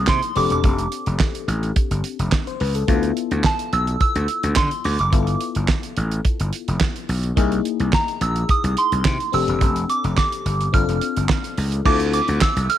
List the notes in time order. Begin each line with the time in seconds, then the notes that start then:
Already playing: A#3 D#4 E4 G#4
0.07 C3 C6, kick, snare, clap
0.22 closed hi-hat
0.36 F1 C4 D4 G4 A4 D6, open hi-hat
0.50 E1 D6, closed hi-hat
0.64 F1, kick, closed hi-hat
0.78 closed hi-hat
0.92 closed hi-hat
1.06 F1, closed hi-hat
1.19 kick, snare, clap
1.35 closed hi-hat
1.48 A1, closed hi-hat
1.63 closed hi-hat
1.76 kick, closed hi-hat
1.91 G1, closed hi-hat
2.04 closed hi-hat
2.19 F1, closed hi-hat
2.32 kick, snare, clap
2.47 C5, closed hi-hat
2.60 C#2 B4, open hi-hat
2.75 A4, closed hi-hat
2.87 D2 B3 E4 F4 A4, kick, closed hi-hat
3.03 closed hi-hat
3.17 closed hi-hat
3.31 D2, closed hi-hat
3.44 A5, kick, snare, clap
3.59 closed hi-hat
3.73 B1 E6, closed hi-hat
3.87 closed hi-hat
4.01 E6, kick, closed hi-hat
4.16 D2, closed hi-hat
4.28 closed hi-hat
4.43 D2, closed hi-hat
4.55 D3 C6, kick, snare, clap
4.71 closed hi-hat
4.84 D2 D6, open hi-hat
4.99 F#1 D6, closed hi-hat
5.12 G1 B3 E4 F4 A4, kick, closed hi-hat
5.27 closed hi-hat
5.41 closed hi-hat
5.55 G1, closed hi-hat
5.68 kick, snare, clap
5.83 closed hi-hat
5.97 A1, closed hi-hat
6.11 closed hi-hat
6.25 kick, closed hi-hat
6.40 G1, closed hi-hat
6.53 closed hi-hat
6.68 F1, closed hi-hat
6.80 kick, snare, clap
6.96 closed hi-hat
7.09 B1, open hi-hat
7.23 closed hi-hat
7.36 C2 A#3 D#4 E4 G#4, kick, closed hi-hat
7.52 closed hi-hat
7.65 closed hi-hat
7.80 C2, closed hi-hat
7.92 A#5, kick, snare, clap
8.08 closed hi-hat
8.21 A#1 E6, closed hi-hat
8.36 closed hi-hat
8.49 D#6, kick, closed hi-hat
8.64 C2, closed hi-hat
8.77 C6, closed hi-hat
8.92 C2, closed hi-hat
9.05 C3, kick, snare, clap
9.20 closed hi-hat
9.32 F1 C4 D4 G4 A4 E6, open hi-hat
9.48 E1, closed hi-hat
9.61 F1, kick, closed hi-hat
9.76 closed hi-hat
9.90 D6, closed hi-hat
10.04 F1, closed hi-hat
10.17 D6, kick, snare, clap
10.32 closed hi-hat
10.45 G1, closed hi-hat
10.61 closed hi-hat
10.73 G1 C4 D4 F4 A4 F6, kick, closed hi-hat
10.89 F1, closed hi-hat
11.01 closed hi-hat
11.17 G1, closed hi-hat
11.29 kick, snare, clap
11.44 closed hi-hat
11.57 C#2, open hi-hat
11.72 closed hi-hat
11.85 D2 C4 E4 F4 A4 D6, kick, crash
12.00 closed hi-hat
12.13 D6, closed hi-hat
12.28 D2, closed hi-hat
12.41 E6, kick, snare, clap
12.56 C2, closed hi-hat
12.70 F6, closed hi-hat